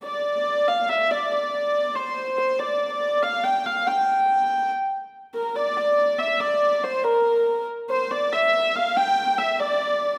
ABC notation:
X:1
M:6/8
L:1/8
Q:3/8=94
K:Dm
V:1 name="Hurdy-gurdy"
d3 f e d | d3 c2 c | d3 f g f | g4 z2 |
z B d d2 e | d2 c B3 | z c d e2 f | g2 e d3 |]